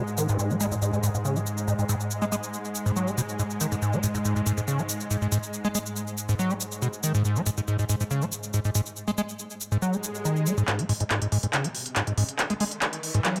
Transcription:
Already playing: synth drone G#2 G#3
0.07 shaker
0.18 acid bass D#3, shaker
0.29 acid bass G#2, shaker
0.39 acid bass G#2, shaker
0.50 acid bass G#3, shaker
0.60 acid bass G#3, shaker
0.72 acid bass G#2, shaker
0.82 acid bass G#2, shaker
0.93 acid bass G#2, shaker
1.03 acid bass G#2, shaker
1.14 acid bass G#2, shaker
1.25 acid bass C#3, shaker
1.36 acid bass G#3, shaker
1.46 shaker
1.58 shaker
1.68 acid bass G#2, shaker
1.79 acid bass G#2, shaker
1.89 acid bass G#2, shaker
2.00 shaker
2.11 shaker
2.22 acid bass G#3, shaker
2.32 acid bass G#3, shaker
2.43 shaker
2.54 shaker
2.65 shaker
2.75 shaker
2.86 acid bass G#2, shaker
2.96 acid bass F#3, shaker
3.07 acid bass G#3, shaker
3.18 acid bass B2, shaker
3.29 shaker
3.39 acid bass G#2, shaker
3.50 shaker
3.61 acid bass D#3, shaker
3.72 acid bass G#2, shaker
3.82 acid bass G#2, shaker
3.93 acid bass G#3, shaker
4.03 acid bass G#2, shaker
4.15 acid bass G#2, shaker
4.25 acid bass G#2, shaker
4.36 acid bass G#2, shaker
4.46 acid bass G#2, shaker
4.57 acid bass G#2, shaker
4.68 acid bass C#3, shaker
4.79 acid bass G#3, shaker
4.89 shaker
5.00 shaker
5.11 acid bass G#2, shaker
5.22 acid bass G#2, shaker
5.32 acid bass G#2, shaker
5.43 shaker
5.53 shaker
5.65 acid bass G#3, shaker
5.75 acid bass G#3, shaker
5.86 shaker
5.96 shaker
6.07 shaker
6.18 shaker
6.29 acid bass G#2, shaker
6.39 acid bass F#3, shaker
6.50 acid bass G#3, shaker
6.61 shaker
6.72 shaker
6.82 acid bass B2, shaker
6.93 shaker
7.03 acid bass D#3, shaker
7.15 acid bass G#2, shaker
7.25 acid bass G#2, shaker
7.36 acid bass G#3, shaker
7.46 acid bass G#2, shaker
7.57 acid bass G#2, shaker
7.68 acid bass G#2, shaker
7.79 acid bass G#2, shaker
7.89 acid bass G#2, shaker
8.00 acid bass G#2, shaker
8.11 acid bass C#3, shaker
8.22 acid bass G#3, shaker
8.32 shaker
8.43 shaker
8.54 acid bass G#2, shaker
8.65 acid bass G#2, shaker
8.75 acid bass G#2, shaker
8.86 shaker
8.96 shaker
9.08 acid bass G#3, shaker
9.18 acid bass G#3, shaker
9.29 shaker
9.39 shaker
9.50 shaker
9.61 shaker
9.72 acid bass G#2, shaker
9.82 acid bass F#3, swell, shaker
9.93 acid bass G#3, shaker
10.04 shaker
10.15 shaker
10.25 acid bass D#3, shaker
10.36 shaker
10.46 acid bass G#3, shaker
10.58 acid bass G#2, shaker
10.68 acid bass G#2, kick, clap, closed hi-hat, riser
10.79 acid bass G#3, closed hi-hat
10.89 acid bass G#2, open hi-hat
11.00 acid bass G#2, closed hi-hat
11.11 acid bass G#2, kick, clap, closed hi-hat
11.22 acid bass G#2, closed hi-hat
11.32 acid bass G#2, open hi-hat
11.43 acid bass G#2, closed hi-hat
11.53 acid bass C#3, kick, clap, closed hi-hat
11.64 acid bass G#3, closed hi-hat
11.75 open hi-hat
11.86 closed hi-hat
11.96 acid bass G#2, kick, clap, closed hi-hat
12.07 acid bass G#2, closed hi-hat
12.17 acid bass G#2, open hi-hat
12.29 closed hi-hat
12.39 kick, clap, closed hi-hat
12.50 acid bass G#3, closed hi-hat
12.60 acid bass G#3, open hi-hat
12.71 closed hi-hat
12.82 kick, clap, closed hi-hat
12.93 closed hi-hat
13.03 open hi-hat
13.14 acid bass G#2, closed hi-hat
13.25 acid bass F#3, kick, clap, closed hi-hat
13.36 acid bass G#3, closed hi-hat

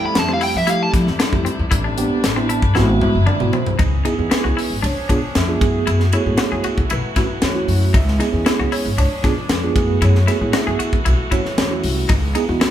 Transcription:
Already playing: string section C3 F3 G3 A3 E4, tine electric piano A3 C4 E4 A4
0.03 lead electric guitar B5, muted upright bass stroke
0.15 upright bass F2, lead electric guitar A5, snare, closed hi-hat
0.28 tine electric piano A3 C4 E4 G4, clean electric guitar C4
0.33 lead electric guitar F5
0.41 clean electric guitar E4, lead electric guitar G5, open hi-hat
0.55 upright bass F3, lead electric guitar E5
0.67 tine electric piano A3 C4 E4 G4, clean electric guitar E4, lead electric guitar F5, closed hi-hat
0.83 lead electric guitar A5
0.93 upright bass F3, kick, snare, closed hi-hat
1.07 upright bass E2, snare
1.19 clean electric guitar D4, snare, closed hi-hat
1.33 upright bass F2, tine electric piano A3 C4 E4 G4, kick
1.45 clean electric guitar C4, closed hi-hat
1.59 upright bass E2, tine electric piano E4 A4
1.71 upright bass A1, string section D4 B4, clean electric guitar E4, kick, closed hi-hat
1.84 clean electric guitar D4
1.97 tine electric piano B3 C4 D4 G4, closed hi-hat
2.11 muted upright bass stroke
2.24 upright bass A1, snare, closed hi-hat
2.36 tine electric piano B3 C4 D4 E4, clean electric guitar C4
2.49 clean electric guitar E4, tine electric piano A5, closed hi-hat
2.62 upright bass G1, kick
2.75 upright bass G#1, string section F#3 G#3 E4, tine electric piano B3 C4 E4 F#4 F#5, clean electric guitar E4, snare
3.01 upright bass G#2, tine electric piano E5, high tom
3.15 upright bass F#1
3.26 clean electric guitar D4, tine electric piano D5, mid tom
3.40 upright bass G#1, tine electric piano B3 C4 E4 F#4, mid tom
3.53 clean electric guitar C4, tine electric piano C5, floor tom
3.66 upright bass C2, tine electric piano E4 G#4, floor tom
3.79 upright bass C#2, string section E3 B3 C#4 G#4, clean electric guitar D#4, kick, ride bell
4.05 tine electric piano B3 D#4 E4 G#4, clean electric guitar D#4, ride bell
4.18 upright bass E2, tine electric piano B3 D#4 E4
4.31 clean electric guitar E4, tine electric piano B4, muted upright bass stroke, snare, ride bell
4.44 upright bass C#2, clean electric guitar F#4
4.57 clean electric guitar E4, open hi-hat
4.70 upright bass G#1
4.82 upright bass C#2, string section F3 B3 D4, clean electric guitar D4, ride bell
4.86 tine electric piano C#5
4.97 muted upright bass stroke
5.09 upright bass B1, tine electric piano B3 D4 F4 G#4, clean electric guitar D4, kick, ride bell
5.23 tine electric piano B4
5.35 upright bass F2, tine electric piano E5, snare, ride bell
5.48 tine electric piano B3 D4 F4 G#4
5.60 upright bass F#2, string section E3 A3 F#4, tine electric piano A3 B3 E4 G#4, kick, ride bell
5.87 upright bass F#2, clean electric guitar E4, ride bell
6.00 snare
6.13 tine electric piano A3 B3 E4 G#4 C#5, clean electric guitar E4, ride bell
6.26 upright bass A2, tine electric piano A3 B3 E4 G#4
6.38 clean electric guitar F#4, tine electric piano C#5, muted upright bass stroke, snare, ride bell
6.52 upright bass F#2, clean electric guitar G#4
6.64 clean electric guitar F#4, muted upright bass stroke, ride bell
6.78 upright bass C#2, kick
6.90 upright bass B1, string section F#3, clean electric guitar E4, tine electric piano B4, ride bell
7.05 muted upright bass stroke
7.16 upright bass A1, tine electric piano A3 C#4 E4 F#4, clean electric guitar E4, kick, snare, ride bell
7.30 muted upright bass stroke
7.42 upright bass E2, tine electric piano C#5, snare, ride bell
7.55 tine electric piano A3 C#4 E4 F#4
7.68 upright bass F#2, open hi-hat
7.93 upright bass C#2, string section G#3 C#4, clean electric guitar D#4, tine electric piano E5, kick, ride bell
8.08 snare
8.19 tine electric piano B3 D#4 E4 G#4, clean electric guitar D#4, snare, ride bell
8.32 upright bass E2, tine electric piano B3 C#4 E4 G#4
8.46 clean electric guitar E4, muted upright bass stroke, snare, ride bell
8.59 upright bass C#2, clean electric guitar F#4
8.72 clean electric guitar E4, tine electric piano C#5, open hi-hat
8.85 upright bass G#1
8.98 upright bass C#2, string section F3 D4, clean electric guitar D4, tine electric piano C#5, ride bell
9.23 upright bass B1, tine electric piano B3 D4 F4 G#4, clean electric guitar D4, kick, snare, ride bell
9.37 tine electric piano F4 B4, muted upright bass stroke
9.49 upright bass F2, tine electric piano B4, snare, ride bell
9.63 tine electric piano B3 D4 F4 G#4
9.75 upright bass F#2, string section E3 A3 F#4, tine electric piano A3 B3 E4 G#4, kick, ride bell
10.02 upright bass F#2, clean electric guitar E4, tine electric piano C#5, ride bell
10.15 snare
10.27 tine electric piano A3 B3 E4 G#4, clean electric guitar E4, snare, ride bell
10.41 upright bass A2, tine electric piano A3 B3 E4 G#4
10.53 clean electric guitar F#4, tine electric piano E5, muted upright bass stroke, snare, ride bell
10.67 upright bass F#2, clean electric guitar G#4
10.79 clean electric guitar F#4, muted upright bass stroke, ride bell
10.93 upright bass C#2, kick
11.05 upright bass B1, string section F#3, clean electric guitar E4, ride bell
11.20 muted upright bass stroke
11.31 upright bass A1, tine electric piano A3 C#4 E4 F#4 C#5, clean electric guitar E4, kick, ride bell
11.45 tine electric piano E4 G#4, snare
11.58 upright bass E2, tine electric piano C#5, snare, ride bell
11.71 tine electric piano A3 C#4 E4 F#4
11.84 upright bass C2, open hi-hat
12.09 upright bass C#2, string section C#3 B3, clean electric guitar D#4, kick, ride bell
12.35 tine electric piano B3 D#4 E4 G#4, clean electric guitar D#4, ride bell
12.49 upright bass E2, tine electric piano B3 D#4 E4 F#4
12.61 clean electric guitar E4, muted upright bass stroke, snare, ride bell

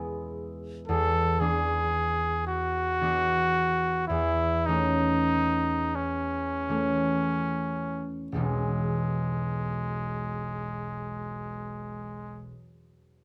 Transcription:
Already playing: harp E2 G#3 B3 E4 B4 E5
0.87 harp E2, trumpet A4
1.40 harp E3 B3 D4, trumpet G#4
2.47 trumpet F#4
3.01 harp E3 B3 D4
4.08 harp E2, trumpet E4
4.66 harp E3 A3 C#4, trumpet D#4
5.95 trumpet C#4
6.69 harp E3 A3 C#4
8.32 harp E1 B1 G#3 B3 E4, trumpet G#3
8.36 harp E3

